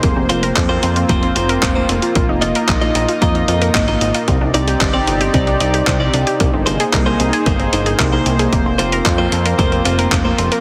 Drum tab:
HH |x-xxx-xxxxxxx-xx|x-xxxxxxxxxxxxxx|x-xxx-xxxxxxx-xx|x-xxx-xxxxxxx-xx|
CP |----x-------x---|----x-------x---|----x-------x---|----x-------x---|
BD |o---o---o---o---|o---o---o---o---|o---o---o---o---|o---o---o---o---|

HH |x-xxx-xxxxxxx-xx|
CP |----x-------x---|
BD |o---o---o---o---|